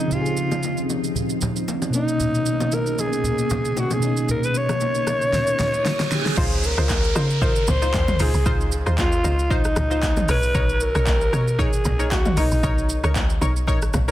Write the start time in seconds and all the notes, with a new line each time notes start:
Already playing: C#3 F3 C4 D#4 F4
0.07 C#3 C4, low conga, shaker
0.13 D#4 F4 G4
0.21 G#4
0.26 shaker
0.37 shaker
0.51 low bongo, shaker
0.63 high bongo, shaker
0.77 shaker
0.90 low bongo, shaker
1.04 shaker
1.15 low conga, shaker
1.30 shaker
1.41 low bongo, low conga, shaker
1.56 high bongo, shaker
1.68 high bongo, shaker
1.82 low bongo, shaker
1.90 B2 A#3 C#4, shaker
1.94 C#4 D#4, high bongo
2.08 shaker
2.20 low conga, shaker
2.35 shaker
2.46 shaker
2.60 low bongo, shaker
2.72 A#4, high bongo, shaker
2.86 shaker
2.99 G#4, low bongo, shaker
3.13 shaker
3.24 low conga, shaker
3.38 shaker
3.50 low bongo, low conga, shaker
3.65 high bongo, shaker
3.77 F#4, high bongo, shaker
3.91 G#4, low bongo, shaker
3.99 B2 A#3, high bongo, shaker
4.04 C#4 D#4
4.17 shaker
4.29 A#4, low conga, shaker
4.44 B4, shaker
4.55 C#5, shaker
4.69 cross-stick, low bongo, shaker
4.80 high bongo, shaker
4.95 shaker
5.07 cross-stick, low bongo, shaker
5.21 shaker
5.33 snare, reverse cymbal, low conga, shaker
5.47 shaker
5.59 snare, low bongo, low conga, shaker
5.73 high bongo, shaker
5.85 snare, high bongo, shaker
5.99 snare, low bongo, shaker
6.11 G#4, snare, high bongo, shaker
6.26 snare, shaker
6.37 C#2 D#4 F4 C5, kick, crash, downlifter, low conga, shaker
6.52 shaker
6.63 A#4, shaker
6.77 C#2 D#4 F4 C5, cross-stick, shaker
6.89 kick, clap, high bongo, shaker
7.04 shaker
7.15 C#3 D#4 F4 C5, cross-stick, low bongo, shaker
7.30 shaker
7.41 D#4 F4 A#4 C5, kick, low conga, shaker
7.56 shaker
7.67 C#2 C5, low bongo, low conga, shaker
7.82 D#4 F4 C5, high bongo, shaker
7.94 D#2, kick, clap, high bongo, shaker
8.08 mid tom, low bongo, shaker
8.19 C#2 D#4 F4 G#4 C5, open hi-hat, high bongo, shaker
8.34 C2, shaker
8.46 C#2 D#4 F4 C5, kick, low conga, shaker
8.61 shaker
8.72 shaker
8.86 D#2 D#4 F4 C5, cross-stick, shaker
8.98 F4, kick, clap, high bongo, shaker
9.12 shaker
9.24 C#2 D#4 F4 C5, low bongo, shaker
9.39 shaker
9.50 D#4 F4 C5, kick, low conga, shaker
9.65 cross-stick, shaker
9.76 C#2, cross-stick, low bongo, low conga, shaker
9.91 D#4 F4 C5, high bongo, shaker
10.03 kick, clap, high bongo, shaker
10.17 mid tom, low bongo, shaker
10.28 B1 D#4 A#4 B4 C#5, cross-stick, open hi-hat, high bongo, shaker
10.43 shaker
10.54 B1 D#4 A#4 C#5, kick, low conga, shaker
10.69 shaker
10.80 A#4, shaker
10.95 B1 D#4 A#4 C#5, cross-stick, shaker
11.06 kick, clap, high bongo, shaker
11.21 shaker
11.33 B2 D#4 A#4 C#5, cross-stick, low bongo, shaker
11.48 shaker
11.59 D#4 G#4 A#4 C#5, kick, low conga, shaker
11.73 shaker
11.85 B1, low bongo, low conga, shaker
11.99 D#4 A#4 C#5, high bongo, shaker
12.12 C#2 F#4, kick, clap, high bongo, shaker
12.25 mid tom, low bongo, shaker
12.37 B1 D#4 A#4 C#5, open hi-hat, high bongo, shaker
12.52 A#1, shaker
12.63 B1 D#4 A#4 C#5, kick, low conga, shaker
12.78 shaker
12.89 shaker
13.04 C#2 D#4 A#4 C#5, cross-stick, shaker
13.15 kick, clap, high bongo, shaker
13.30 shaker
13.41 B1 D#4 A#4 C#5, low bongo, shaker
13.56 shaker
13.67 D#4 A#4 C#5, kick, low conga, shaker
13.82 cross-stick, shaker
13.94 B1, cross-stick, low bongo, low conga, shaker
14.08 D#4, high bongo